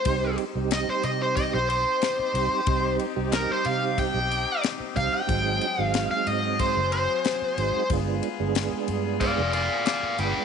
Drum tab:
RD |xxxxxxxx|xxxxxxxx|xxxxxxxx|xxxxxxxx|
SD |--o---o-|--o---o-|--o---o-|--o---o-|
BD |o---o---|o---o--o|o---o---|o---o---|